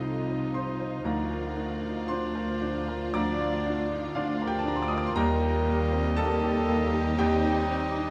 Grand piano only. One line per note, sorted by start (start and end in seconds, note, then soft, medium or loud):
0.00 1.02 C2 medium
0.00 0.02 D#4 soft
0.00 0.44 D#4 medium
0.00 1.08 F4 soft
0.00 0.51 A4 medium
0.00 0.28 C5 medium
0.00 0.51 F5 medium
0.00 0.50 A5 medium
0.28 0.54 C5 medium
0.54 0.95 D#4 soft
0.54 0.78 C5 medium
0.54 1.02 C6 medium
0.80 1.06 C5 medium
1.04 3.10 D2 medium
1.04 1.29 A#4 medium
1.04 2.06 F5 medium
1.04 2.05 A#5 medium
1.30 1.72 A#4 medium
1.56 1.98 D4 medium
1.83 2.09 D#4 soft
2.08 2.52 D4 medium
2.08 3.11 C5 medium
2.08 3.10 C6 medium
2.35 2.78 A#4 medium
2.62 3.04 D4 medium
2.88 3.30 A#4 medium
3.14 5.11 D2 medium
3.14 4.13 D5 medium
3.14 4.13 A#5 medium
3.14 4.12 D6 medium
3.40 3.81 F4 medium
3.67 4.07 D4 medium
3.91 4.16 D#4 medium
4.15 4.56 D4 medium
4.15 4.44 F4 medium
4.15 4.44 D5 medium
4.15 4.43 F5 medium
4.42 4.81 A#4 medium
4.47 4.59 G4 medium
4.47 4.59 G5 medium
4.59 4.68 A5 medium
4.65 5.05 D4 medium
4.65 4.75 A#5 medium
4.76 4.82 C6 medium
4.82 4.89 D6 medium
4.88 5.16 A#4 medium
4.88 4.96 D#6 medium
4.98 5.06 D6 medium
5.07 5.15 C6 medium
5.16 7.15 D#2 medium
5.16 6.14 A#4 medium
5.16 6.14 G5 medium
5.16 6.13 A#5 loud
5.42 5.82 G4 medium
5.68 6.08 A#3 medium
5.92 6.17 C4 medium
6.16 6.59 A#3 medium
6.16 7.15 A4 medium
6.16 7.15 A5 loud
6.44 6.84 G4 medium
6.69 7.09 A#3 medium
6.94 7.18 G4 medium
7.19 8.10 D#2 loud
7.19 7.44 G4 medium
7.19 8.10 D#5 medium
7.19 8.10 G5 loud
7.45 7.88 G4 medium
7.70 8.10 C4 medium
7.98 8.10 D4 medium